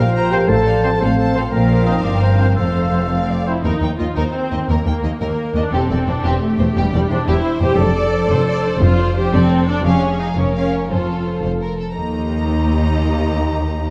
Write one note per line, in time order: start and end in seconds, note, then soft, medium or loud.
0.00 0.41 A#1 medium
0.00 0.40 A#2 medium
0.00 0.41 A#2 medium
0.00 0.35 F3 soft
0.00 0.39 C4 soft
0.00 0.32 F4 medium
0.00 0.13 A#4 medium
0.00 0.14 A#4 medium
0.00 0.44 C5 soft
0.00 0.48 C5 medium
0.00 0.15 F5 medium
0.00 0.33 F5 medium
0.00 0.48 G5 medium
0.13 0.30 C5 soft
0.13 0.31 A#5 medium
0.30 1.45 A2 soft
0.30 0.38 F3 medium
0.30 0.38 C4 medium
0.30 0.48 G4 medium
0.30 0.49 A#4 soft
0.30 0.50 A#4 soft
0.30 0.38 C5 medium
0.30 0.49 F5 soft
0.30 0.50 G5 medium
0.36 1.38 F3 soft
0.40 1.42 C4 soft
0.45 0.99 A4 medium
0.45 1.47 C5 soft
0.45 0.64 C5 soft
0.45 0.56 C5 medium
0.45 1.02 A5 medium
0.49 0.92 A1 medium
0.49 0.92 A2 medium
0.49 0.65 A4 medium
0.49 0.99 F5 soft
0.49 0.66 A5 medium
0.65 0.83 A4 soft
0.65 0.84 C5 soft
0.65 0.82 D5 medium
0.65 0.84 F5 soft
0.83 0.90 F3 soft
0.83 0.90 C4 medium
0.83 1.01 A4 soft
0.83 1.00 C5 soft
0.83 0.89 C5 medium
0.83 0.91 D5 medium
0.83 1.01 A5 soft
1.00 1.44 A1 medium
1.00 1.44 A2 medium
1.00 1.37 C4 medium
1.00 1.18 A4 soft
1.00 1.34 C5 medium
1.00 1.08 C5 soft
1.00 1.19 C5 medium
1.00 1.51 F5 soft
1.00 1.19 F5 soft
1.17 1.34 A4 soft
1.17 1.33 C5 soft
1.17 1.34 A5 soft
1.35 2.51 A#2 soft
1.35 1.42 F3 medium
1.35 1.42 C4 medium
1.35 1.42 A4 medium
1.35 1.53 A4 soft
1.35 1.41 C5 medium
1.35 1.53 C5 soft
1.35 1.53 F5 soft
1.39 2.44 F3 soft
1.44 2.48 C4 soft
1.48 2.01 A#1 soft
1.48 2.03 A#4 soft
1.48 1.84 A#4 medium
1.48 2.53 C5 soft
1.53 2.02 A#2 medium
1.53 1.87 A#3 medium
1.53 2.54 A#4 medium
1.53 2.55 C5 soft
1.53 2.55 F5 soft
1.53 2.58 G5 soft
1.87 1.95 F3 soft
1.87 1.95 C4 soft
1.87 2.05 D#4 medium
1.87 1.93 C5 soft
1.87 2.02 D#5 soft
2.03 2.58 G1 soft
2.03 2.58 G2 soft
2.03 2.23 D4 medium
2.03 2.60 A#4 soft
2.03 2.21 D5 soft
2.22 2.58 C4 medium
2.22 2.55 C5 soft
2.39 3.57 F2 soft
2.39 2.45 F3 soft
2.39 2.46 C4 soft
2.39 2.47 C5 soft
2.45 3.59 F3 soft
2.49 3.62 C4 soft
2.54 3.45 A3 soft
2.54 3.44 A4 soft
2.54 3.64 C5 soft
2.54 3.11 C5 soft
2.59 3.47 F1 soft
2.59 3.47 F2 soft
2.59 3.47 C5 soft
2.59 3.08 C5 soft
2.59 3.45 F5 soft
2.59 3.48 F5 soft
2.93 3.01 F3 soft
2.93 3.02 C4 soft
2.93 3.00 C5 soft
3.11 3.45 C4 medium
3.11 3.28 F5 soft
3.30 3.47 D5 soft
3.46 3.54 F3 soft
3.46 3.53 C4 soft
3.46 3.64 E4 medium
3.46 3.53 C5 soft
3.46 3.65 C5 soft
3.64 3.71 D#2 soft
3.64 3.72 D#2 soft
3.64 4.68 D#3 soft
3.64 3.98 D#4 medium
3.64 3.81 A#4 soft
3.73 4.51 D#4 soft
3.82 3.89 D#2 soft
3.82 3.90 G5 soft
3.91 4.34 A#4 soft
3.98 4.07 D#2 soft
3.98 4.16 F4 soft
3.98 4.07 D#5 soft
3.98 5.02 D#5 soft
4.10 4.25 G5 soft
4.15 4.23 D#2 soft
4.15 4.24 D#2 soft
4.15 4.23 D#4 medium
4.15 4.33 A#4 soft
4.15 4.65 C5 soft
4.33 4.68 C4 medium
4.33 4.93 A#4 soft
4.43 4.85 G4 soft
4.51 4.58 D#2 soft
4.51 4.59 D#2 soft
4.51 4.76 D#4 soft
4.51 4.58 D#5 soft
4.61 5.63 A#3 soft
4.69 4.76 D#2 soft
4.69 5.74 D#3 soft
4.69 4.85 A#3 medium
4.69 4.85 A#4 soft
4.69 5.18 A#4 soft
4.78 5.55 D#4 soft
4.85 4.92 D#2 soft
4.85 4.93 D#2 soft
4.85 5.20 A#3 medium
4.85 5.46 G4 soft
4.85 4.93 G5 soft
4.95 5.38 A#4 soft
5.03 5.10 D#2 soft
5.03 5.11 D#2 soft
5.03 5.74 D#5 soft
5.03 5.11 D#5 soft
5.12 5.29 G5 soft
5.19 5.28 D#2 soft
5.19 5.28 D#2 medium
5.19 5.55 A#3 medium
5.19 5.71 A#4 soft
5.19 5.37 A#4 soft
5.19 5.74 A#5 soft
5.30 6.16 G5 soft
5.39 5.74 A#4 soft
5.47 5.90 G4 soft
5.55 5.62 D#2 soft
5.55 5.63 D#2 soft
5.55 5.73 D4 medium
5.55 5.74 D#4 soft
5.55 5.62 D#5 soft
5.72 5.80 E1 medium
5.72 5.79 E2 medium
5.72 6.77 E3 soft
5.72 6.08 C4 medium
5.72 5.89 G4 soft
5.72 6.23 A4 soft
5.82 6.58 D4 soft
5.90 5.97 E1 soft
5.90 5.97 E2 soft
5.90 6.49 G4 soft
5.90 5.97 D5 soft
6.00 6.42 C5 soft
6.07 6.15 E1 soft
6.07 6.14 E2 soft
6.07 6.25 D4 medium
6.07 6.14 C5 soft
6.07 7.10 D5 soft
6.17 6.33 G5 soft
6.23 6.32 E1 medium
6.23 6.31 E2 medium
6.23 6.42 C4 medium
6.23 6.40 G4 medium
6.23 7.27 G4 medium
6.23 7.27 C6 soft
6.34 7.18 G5 soft
6.42 6.75 A3 medium
6.42 7.01 C5 soft
6.50 6.93 G4 soft
6.58 6.66 E1 soft
6.58 6.66 E2 soft
6.58 6.85 D4 soft
6.58 6.65 C5 soft
6.69 7.70 C4 soft
6.75 6.82 E1 medium
6.75 6.83 E2 medium
6.75 7.81 E3 medium
6.75 6.92 G3 medium
6.75 6.92 G4 medium
6.86 7.61 D4 soft
6.92 7.00 E1 soft
6.92 7.01 E2 soft
6.92 7.10 G3 medium
6.92 7.52 G4 soft
6.92 6.99 D5 soft
7.02 7.44 C5 soft
7.10 7.18 E1 soft
7.10 7.17 E2 medium
7.10 7.27 D4 medium
7.10 7.17 C5 soft
7.10 8.11 D5 soft
7.19 7.35 G5 soft
7.27 7.35 E1 medium
7.27 7.34 E2 medium
7.27 7.61 E4 medium
7.27 7.43 G4 medium
7.27 7.78 C5 medium
7.27 8.29 C6 soft
7.45 8.02 C5 soft
7.54 7.80 G4 soft
7.62 7.69 E1 soft
7.62 7.69 E2 soft
7.62 7.86 D4 soft
7.62 7.78 G4 medium
7.62 7.69 C5 soft
7.71 8.72 C4 soft
7.78 8.22 F1 medium
7.78 8.22 F2 medium
7.78 8.80 F3 medium
7.78 7.95 A4 medium
7.78 7.95 C5 soft
7.78 8.30 D5 medium
7.87 8.63 D4 soft
7.95 8.55 F4 soft
7.95 8.80 A4 medium
7.95 8.13 D5 soft
8.04 8.46 C5 soft
8.12 8.29 C5 soft
8.12 9.15 D5 soft
8.21 8.37 F5 soft
8.28 8.74 F1 medium
8.28 8.74 F2 medium
8.28 8.48 C5 medium
8.28 8.46 D5 medium
8.38 9.24 F5 soft
8.46 8.63 C5 soft
8.46 9.07 C5 medium
8.46 8.65 D5 medium
8.56 8.98 F4 soft
8.63 8.89 D4 soft
8.63 9.32 C5 medium
8.63 8.81 D5 soft
8.73 9.76 C4 soft
8.80 9.25 F1 medium
8.80 9.26 F2 medium
8.80 9.85 F3 medium
8.80 9.16 F4 medium
8.80 8.98 C5 medium
8.90 9.67 D4 soft
8.98 9.57 F4 soft
8.98 9.16 D5 soft
9.08 9.49 C5 soft
9.16 9.34 G4 medium
9.16 9.33 C5 soft
9.16 9.87 D5 soft
9.25 9.41 F5 soft
9.33 9.77 F1 medium
9.33 9.77 F2 medium
9.33 9.69 C4 medium
9.33 9.86 A4 medium
9.33 9.51 D5 soft
9.33 9.87 C6 soft
9.50 9.87 C5 soft
9.50 9.68 C5 soft
9.59 10.02 F4 soft
9.68 9.87 D4 soft
9.68 9.86 D4 medium
9.68 9.86 D5 soft
9.77 9.87 C4 soft
9.85 10.29 F1 medium
9.85 10.29 F2 medium
9.85 10.91 F3 medium
9.85 10.20 C#4 medium
9.85 10.38 G#4 medium
9.85 10.02 F5 soft
10.02 10.64 F4 soft
10.02 10.20 C#5 soft
10.12 10.55 G#4 soft
10.19 10.27 D#4 medium
10.19 10.93 C#5 soft
10.19 10.37 F5 soft
10.30 10.46 F5 soft
10.38 10.83 F1 medium
10.38 10.82 F2 medium
10.38 10.55 C#4 medium
10.38 10.91 A#4 medium
10.38 10.55 C#5 soft
10.38 10.92 G#5 soft
10.47 11.35 F5 soft
10.55 10.91 C#4 medium
10.55 10.93 G#4 soft
10.55 10.72 F5 soft
10.65 11.08 F4 soft
10.74 10.93 C#4 soft
10.74 10.91 C#5 soft
10.90 11.36 F1 soft
10.90 11.35 F2 soft
10.90 11.99 F3 soft
10.90 11.43 F4 medium
10.90 11.72 A4 soft
10.90 11.07 C5 soft
11.01 11.79 C4 soft
11.09 11.71 F4 soft
11.09 11.26 A4 soft
11.18 11.62 A4 soft
11.26 11.43 C5 soft
11.26 11.99 C5 soft
11.36 11.53 F5 soft
11.44 11.89 F1 soft
11.44 11.89 F2 soft
11.44 11.51 C5 soft
11.44 12.00 A5 soft
11.54 11.99 F5 soft
11.61 11.99 A4 soft
11.61 11.79 A#4 soft
11.72 12.00 F4 soft
11.78 11.99 C4 soft
11.78 11.96 A4 soft
11.90 11.99 A3 soft
11.95 13.90 D#2 soft
11.95 13.01 D#3 soft
11.95 13.90 G4 soft
11.95 13.90 D#5 soft
11.95 13.90 A#5 soft
12.16 12.67 D#4 soft
12.34 13.36 A#3 soft
12.51 13.53 G4 soft
12.69 13.18 D#4 soft
12.85 13.87 A#4 soft
13.03 13.90 D#3 soft
13.19 13.70 D#4 soft
13.38 13.90 A#3 soft
13.54 13.90 G4 soft
13.71 13.90 D#4 soft